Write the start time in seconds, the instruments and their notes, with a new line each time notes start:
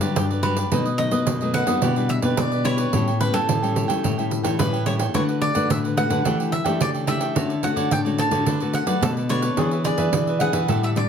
Already playing: nylon-string guitar G2, cavaquinho A4
0.01 nylon-string guitar D3 F#3 B3 D4, cavaquinho G4 B4 D5, pandeiro
0.16 nylon-string guitar G2 D3, cavaquinho G4, pandeiro
0.30 cavaquinho G4 B4 D5, pandeiro
0.43 nylon-string guitar F#3 B3 D4, cavaquinho F#4 G4 B4 D5, pandeiro
0.57 cavaquinho G4 B4 D5, pandeiro
0.72 nylon-string guitar B2 F#3 A3 D#4, cavaquinho A4 B4 D#5, pandeiro
0.85 cavaquinho B4 D#5, pandeiro
0.98 nylon-string guitar F#3 A3 D#4, cavaquinho D#5, pandeiro
1.11 nylon-string guitar B3, cavaquinho B4 D#5, pandeiro
1.27 nylon-string guitar F#2 B2, pandeiro
1.41 nylon-string guitar F#3 A3 D#4, cavaquinho B4 D#5, pandeiro
1.54 cavaquinho A4 B4 D#5 F#5, pandeiro
1.67 nylon-string guitar G3 B3 D4 E4, cavaquinho B4 D#5, pandeiro
1.82 nylon-string guitar B2, cavaquinho E4 G4 B4 D5, pandeiro
1.96 nylon-string guitar G3 D4 E4, cavaquinho G4 B4 D5, pandeiro
2.09 cavaquinho E5, muted cavaquinho stroke, pandeiro
2.22 nylon-string guitar B2, cavaquinho G4 B4 D5, pandeiro
2.37 nylon-string guitar B2 G3 D4 E4, cavaquinho D5, pandeiro
2.52 cavaquinho G4 B4 D5, pandeiro
2.64 nylon-string guitar G3 D4 E4, cavaquinho E4 G4 B4 C#5 D5, pandeiro
2.78 cavaquinho G4 B4 D5, pandeiro
2.93 nylon-string guitar A2 G3 C#4 E4, cavaquinho E4 A4 C#5 G5, pandeiro
3.07 cavaquinho A4 C#5 G5, pandeiro
3.21 nylon-string guitar G3 C#4 E4, cavaquinho B4, pandeiro
3.33 nylon-string guitar A3, cavaquinho A4 C#5 G5, pandeiro
3.48 nylon-string guitar A2 E3, pandeiro
3.62 nylon-string guitar G3 C#4 E4, cavaquinho A4 C#5 G5, pandeiro
3.75 cavaquinho E4 A4 C#5 G5, pandeiro
3.88 nylon-string guitar G3 A3 C#4 E4, cavaquinho A4 C#5 G5, pandeiro
4.03 nylon-string guitar A2, cavaquinho E4 A4 C#5 G5, pandeiro
4.18 nylon-string guitar G3 C#4 E4, cavaquinho A4 C#5 G5, pandeiro
4.31 muted cavaquinho stroke, pandeiro
4.43 nylon-string guitar E3, cavaquinho A4 C#5 G5, pandeiro
4.59 nylon-string guitar A2 E3 G3 C#4 E4, cavaquinho B4, pandeiro
4.73 cavaquinho A4 C#5 G5, pandeiro
4.86 nylon-string guitar G3 C#4 E4, cavaquinho E4 A4 C#5 G5, pandeiro
4.99 cavaquinho A4 C#5 G5, pandeiro
5.14 nylon-string guitar D3 A3 B3 F#4, cavaquinho D4 B4 C#5 D5 F#5, pandeiro
5.28 cavaquinho B4 D5 F#5, pandeiro
5.42 cavaquinho D5, pandeiro
5.54 nylon-string guitar D3 A3 B3 F#4, cavaquinho B4 D5 F#5, pandeiro
5.70 nylon-string guitar A2 D3, cavaquinho E5, pandeiro
5.84 cavaquinho B4 D5 F#5, pandeiro
5.97 nylon-string guitar A3 B3 F#4, cavaquinho D4 B4 D5 F#5, pandeiro
6.10 nylon-string guitar D3, cavaquinho B4 D5 F#5, pandeiro
6.24 nylon-string guitar E3 A3 D4 G4, cavaquinho D4 A4 D5 G5, pandeiro
6.39 cavaquinho A4 D5 G5, pandeiro
6.52 cavaquinho E5, muted cavaquinho stroke, pandeiro
6.64 nylon-string guitar E3 A3 D4 G4, cavaquinho A4 D5 G5, pandeiro
6.80 nylon-string guitar C#3 E3, cavaquinho D5, pandeiro
6.94 cavaquinho A4 D5 G5, pandeiro
7.07 nylon-string guitar A3 D4 G4, cavaquinho D4 A4 D5 E5 G5, pandeiro
7.20 cavaquinho A4 D5 G5, pandeiro
7.35 nylon-string guitar D3 A3 C#4 F#4, cavaquinho F#4 A4 C#5 D5, pandeiro
7.49 cavaquinho A4 C#5 D5, pandeiro
7.63 nylon-string guitar A3 C#4 F#4, cavaquinho F#5, pandeiro
7.76 nylon-string guitar D3, cavaquinho A4 C#5 D5, pandeiro
7.91 nylon-string guitar A2 D3, cavaquinho G5, pandeiro
8.05 nylon-string guitar A3 C#4 F#4, cavaquinho A4 C#5 D5, pandeiro
8.18 cavaquinho F#4 A4 C#5 D5 A5, pandeiro
8.31 nylon-string guitar D3 A3 B3 F#4, cavaquinho A4 C#5 D5, pandeiro
8.46 nylon-string guitar D3, cavaquinho D4 A4 B4 D5, pandeiro
8.60 nylon-string guitar A3 B3 F#4, cavaquinho A4 B4 D5, pandeiro
8.73 cavaquinho F#5, muted cavaquinho stroke, pandeiro
8.86 nylon-string guitar F#3, cavaquinho A4 B4 D5, pandeiro
9.01 nylon-string guitar B2 D3 A3 B3 F#4, cavaquinho A4, pandeiro
9.16 cavaquinho A4 B4 D5, pandeiro
9.29 nylon-string guitar A3 B3 F#4, cavaquinho D4 A4 B4 C#5 D5, pandeiro
9.42 cavaquinho A4 B4 D5, pandeiro
9.57 nylon-string guitar E3 B3 D4 G#4, cavaquinho D4 G#4 B4 E5, pandeiro
9.71 cavaquinho G#4 B4 E5, pandeiro
9.84 nylon-string guitar B3 D4 G#4, cavaquinho D5, pandeiro
9.98 nylon-string guitar E3, cavaquinho G#4 B4 E5, pandeiro
10.12 nylon-string guitar B2 E3 B3 D4 G#4, pandeiro
10.27 cavaquinho G#4 B4 E5, pandeiro
10.40 nylon-string guitar B3 D4 G#4, cavaquinho D4 G#4 B4 E5 F#5, pandeiro
10.53 nylon-string guitar E3, cavaquinho G#4 B4 E5, pandeiro
10.68 nylon-string guitar A2 G3 D4 E4, cavaquinho G4 A4 D5 E5, pandeiro
10.83 cavaquinho A4 D5 E5, pandeiro
10.95 nylon-string guitar G3 D4 E4, cavaquinho D5, muted cavaquinho stroke, pandeiro